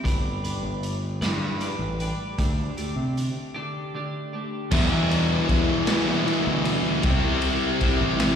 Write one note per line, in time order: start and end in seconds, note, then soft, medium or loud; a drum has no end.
0.04 0.52 G1 medium
0.04 1.23 G3 medium
0.04 1.22 A3 medium
0.04 0.46 D4 medium
0.04 0.45 G4 medium
0.04 0.43 B4 medium
0.04 kick medium
0.04 closed hi-hat medium
0.44 1.22 D4 medium
0.44 1.22 G4 medium
0.44 1.20 B4 medium
0.44 closed hi-hat medium
0.63 1.23 G1 medium
0.83 closed hi-hat medium
1.21 1.69 G2 medium
1.21 2.38 G3 medium
1.21 1.60 A3 medium
1.21 1.61 D4 medium
1.21 1.61 G4 medium
1.21 1.61 B4 medium
1.21 snare medium
1.21 closed hi-hat medium
1.61 2.36 A3 medium
1.61 2.02 D4 medium
1.61 2.01 G4 medium
1.61 1.99 B4 medium
1.61 closed hi-hat medium
1.79 2.11 A1 medium
2.00 2.39 D4 soft
2.00 2.40 G4 medium
2.00 2.36 B4 medium
2.00 closed hi-hat medium
2.38 2.70 D2 medium
2.38 3.16 D3 medium
2.38 2.77 A3 medium
2.38 2.77 D4 medium
2.38 2.76 G4 medium
2.38 kick medium
2.38 closed hi-hat medium
2.77 3.55 A3 medium
2.77 3.55 D4 medium
2.77 3.53 G4 medium
2.77 closed hi-hat medium
2.96 3.28 C3 medium
3.17 closed hi-hat medium
3.55 3.93 D3 medium
3.55 3.94 A3 medium
3.55 3.94 D4 medium
3.55 3.95 G4 medium
3.94 4.69 D3 medium
3.94 4.34 A3 medium
3.94 4.33 D4 medium
3.94 4.32 G4 medium
4.33 4.70 A3 soft
4.33 4.70 D4 medium
4.33 4.69 G4 medium
4.71 4.87 E2 loud
4.71 5.48 E2 medium
4.71 5.48 B2 loud
4.71 5.47 E3 medium
4.71 5.48 G3 medium
4.71 5.47 B3 medium
4.71 5.48 E4 medium
4.71 kick loud
4.71 crash loud
4.90 5.38 E2 medium
5.11 ride medium
5.47 5.81 E2 medium
5.47 5.87 E2 medium
5.47 5.88 B2 medium
5.47 5.85 E3 medium
5.47 5.87 G3 medium
5.47 5.86 B3 loud
5.47 5.86 E4 medium
5.47 kick medium
5.47 ride medium
5.86 6.25 E2 loud
5.86 6.26 B2 medium
5.86 6.23 E3 loud
5.86 6.24 G3 medium
5.86 6.24 B3 loud
5.86 6.24 E4 loud
5.86 snare loud
5.86 ride loud
6.25 7.02 E2 medium
6.25 7.02 B2 medium
6.25 7.01 E3 medium
6.25 7.03 G3 medium
6.25 7.01 B3 medium
6.25 7.01 E4 loud
6.25 ride medium
6.47 6.78 D2 loud
6.65 ride medium
7.03 7.20 C2 loud
7.03 7.81 C3 medium
7.03 7.82 G3 loud
7.03 7.81 C4 medium
7.03 7.82 E4 loud
7.03 kick loud
7.03 ride loud
7.08 8.36 C4 loud
7.23 7.55 C2 loud
7.42 ride medium
7.81 8.18 C3 medium
7.81 8.20 G3 medium
7.81 8.20 C4 medium
7.81 8.20 E4 medium
7.81 kick medium
7.81 ride medium
8.01 8.33 A1 medium
8.20 8.36 C3 loud
8.20 8.36 G3 loud
8.20 8.36 C4 loud
8.20 8.36 E4 loud
8.20 snare loud
8.20 ride loud